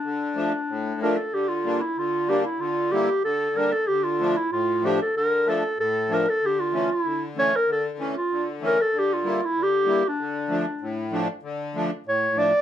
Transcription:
<<
  \new Staff \with { instrumentName = "Clarinet" } { \time 2/4 \key d \minor \tempo 4 = 95 d'4. bes'16 a'16 | g'16 f'8 e'16 f'8 g'16 e'16 | f'8 g'8 a'8 bes'16 a'16 | g'16 f'8 e'16 f'8 g'16 a'16 |
bes'8 a'8 a'8 bes'16 a'16 | g'16 f'8 e'8 r16 cis''16 bes'16 | a'16 r8 f'8 r16 bes'16 a'16 | g'16 f'8 e'16 g'8. d'16~ |
d'4. r8 | r4 cis''8 d''8 | }
  \new Staff \with { instrumentName = "Accordion" } { \clef bass \time 2/4 \key d \minor << { r8 <f a d'>16 r8. <f a d'>16 r16 | r8 <g bes d'>16 r8. <g bes d'>16 r16 | r8 <g bes e'>16 r8. <g bes d'>16 r16 | r8 <f a d'>16 r8. <f a d'>16 r16 |
r8 <f a d'>16 r8. <f a d'>16 r16 | r8 <e a cis'>16 r8. <e a cis'>16 r16 | r8 <e a cis'>16 r8. <e a cis'>16 r16 | r8 <g bes e'>16 r8. <g bes e'>16 r16 |
r8 <f a d'>16 r8. <f a d'>16 r16 | r8 <f a d'>16 r8. <f a d'>16 r16 | } \\ { d4 a,4 | d4 d4 | d4 d4 | d4 a,4 |
d4 a,4 | d4 d4 | d4 d4 | d4 d4 |
d4 a,4 | d4 a,4 | } >> }
>>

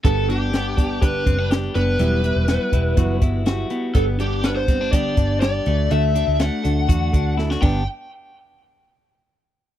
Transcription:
<<
  \new Staff \with { instrumentName = "Lead electric guitar" } { \time 4/4 \key g \major \tempo 4 = 123 a'8 g'4. b'4 r8 b'8~ | b'2~ b'8 r4. | a'8 g'8 b'16 c''8. d''4 d''4 | e''4 fis''2 r8 g''8 |
r1 | }
  \new Staff \with { instrumentName = "Clean electric guitar" } { \time 4/4 \key g \major b8 d'8 b8 d'8 g'8 c'16 d'16 g'8 b8 | g8 e'8 b8 e'8 fis'8 e'8 fis'8 b8 | b8 d'8 b8 c'16 d'16 g'8 d'8 g'8 a8 | a8 d'8 a8 d'8 fis'8 d'8 e'16 fis'16 <b d' g'>8 |
r1 | }
  \new Staff \with { instrumentName = "Steel-string acoustic guitar" } { \time 4/4 \key g \major <g, d g b d' g'>8 <g b d' g'>8 <g b d' g'>8 <g b d' g'>8 <g, d g b d' g'>8 <g b d' g'>8 <g b d' g'>8 <g b d' g'>8 | <e fis b e' g'>8 <b e' g'>8 <fis b e' g'>8 <b e' g'>8 <e fis b e' g'>8 <b e' g'>8 <fis b e' g'>8 <b e' g'>8 | <g, d g b d' g'>8 <g b d' g'>8 <g b d' g'>8 <g b d' g'>8 <g, d g b d' g'>8 <g b d'>8 <g b d' g'>8 <d' fis' a'>8 | <d a d' fis' a'>8 <d' fis' a'>8 <a d' fis' a'>8 <d' fis' a'>8 <d a d' fis' a'>8 <d' fis' a'>8 <a d' fis' a'>8 <g, d g b d' b'>8 |
r1 | }
  \new Staff \with { instrumentName = "Picked electric bass" } { \clef bass \time 4/4 \key g \major g,,2~ g,,8 fis,,4 fis,,8 | e,,8. e,,8 r16 e,,8 fis,,8 g,,4 r8 | g,,2~ g,,8 g,,4 d,8 | d,8. d,8 r16 d,8 e,8 d,4 g,,8 |
r1 | }
  \new DrumStaff \with { instrumentName = "Drums" } \drummode { \time 4/4 <hh bd>8 hh8 <hh sn>8 <hh bd>8 <hh bd>8 <hh bd>8 <hh sn>8 hh8 | hh8 hh8 <hh sn>8 <hh bd>8 <hh bd>8 <hh bd>8 <hh sn>8 hh8 | <hh bd>8 hh8 <hh sn>8 <hh bd>8 <hh bd>8 <hh bd>8 <hh sn>8 hh8 | hh8 hh8 <hh sn>8 <hh sn>8 <hh bd>8 <hh bd>8 sn16 sn16 <cymc bd>8 |
r4 r4 r4 r4 | }
>>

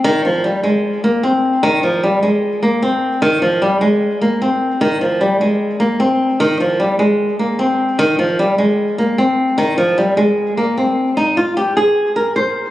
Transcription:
\new Staff \with { instrumentName = "Nylon-string guitar" } { \clef bass \time 4/4 \key c \minor \tempo 4 = 151 ees8 f8 g8 aes4 bes8 c'4 | ees8 f8 g8 aes4 bes8 c'4 | ees8 f8 g8 aes4 bes8 c'4 | ees8 f8 g8 aes4 bes8 c'4 |
ees8 f8 g8 aes4 bes8 c'4 | ees8 f8 g8 aes4 bes8 c'4 | ees8 f8 g8 aes4 bes8 c'4 | ees'8 f'8 g'8 aes'4 bes'8 c''4 | }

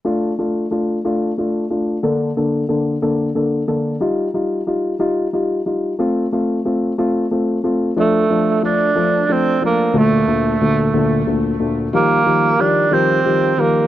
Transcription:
<<
  \new Staff \with { instrumentName = "Tenor saxophone" } { \time 6/8 \key d \phrygian \tempo 4. = 61 r2. | r2. | r2. | r2. |
a4 d'4 c'8 bes8 | a2~ a8 r8 | bes4 d'8 c'4 bes8 | }
  \new Staff \with { instrumentName = "Upright piano" } { \time 6/8 \key d \phrygian <a d' f'>8 <a d' f'>8 <a d' f'>8 <a d' f'>8 <a d' f'>8 <a d' f'>8 | <d bes d' a'>8 <d bes d' a'>8 <d bes d' a'>8 <d bes d' a'>8 <d bes d' a'>8 <d bes d' a'>8 | <g ees' f'>8 <g ees' f'>8 <g ees' f'>8 <g ees' f'>8 <g ees' f'>8 <g ees' f'>8 | <a c' f'>8 <a c' f'>8 <a c' f'>8 <a c' f'>8 <a c' f'>8 <a c' f'>8 |
<f a d'>8 <f a d'>8 <f a d'>8 <f a d'>8 <f a d'>8 <f a d'>8 | <d, bes, d a>8 <d, bes, d a>8 <d, bes, d a>8 <d, bes, d a>8 <d, bes, d a>8 <d, bes, d a>8 | <ees f g>8 <ees f g>8 <ees f g>8 <ees f g>8 <ees f g>8 <ees f g>8 | }
>>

